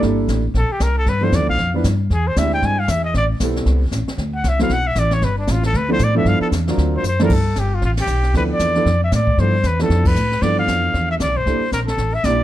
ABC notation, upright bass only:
X:1
M:4/4
L:1/8
Q:"Swing" 1/4=231
K:Gmix
V:1 name="Upright bass" clef=bass
G,,,2 A,,,2 _B,,, z C,,2 | G,,2 (3E,, D,, B,,, F,,2 G,,2 | E,,2 D,,2 G,,2 E,,2 | A,,,2 B,,,2 C,,2 A,,, z |
D,,2 C,,2 B,,,2 A,,,2 | G,,,2 A,,,2 D,,2 A,,2 | G,, z E,,2 D,,2 ^F,,2 | G,,2 G,,,2 A,,,2 B,,,2 |
D,,2 E,,2 F,,2 A,,2 | G,,2 E,,2 F,,2 A,,2 | G,,2 F,,2 E,,2 (3D,, B,,, G,,, | C,, z _B,,,2 A,,,2 B,,,2 |]